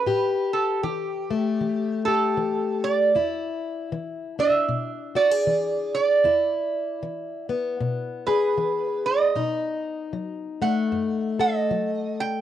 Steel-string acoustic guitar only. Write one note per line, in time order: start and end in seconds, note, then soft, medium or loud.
0.07 0.77 A2 medium
0.07 2.06 G4 medium
0.84 1.54 E3 medium
1.30 3.15 A3 medium
1.61 2.31 E3 medium
2.08 3.12 G4 medium
2.37 3.09 E3 medium
3.15 3.86 E2 medium
3.15 6.22 E4 medium
3.92 4.64 E3 medium
4.39 6.21 D4 medium
4.69 5.41 B2 medium
5.15 5.31 F#4 medium
5.31 6.25 G#4 medium
5.47 6.19 E3 medium
6.24 6.96 E2 medium
6.24 9.32 E4 medium
7.03 7.74 E3 medium
7.49 10.61 B3 medium
7.81 8.52 B2 medium
8.28 9.32 G#4 medium
8.58 9.29 E3 medium
9.36 10.07 B2 medium
9.36 12.41 D#4 medium
10.13 10.85 F#3 medium
10.62 12.41 A3 medium
10.92 11.63 F#2 medium
11.39 12.41 A4 medium
11.71 12.41 F#3 medium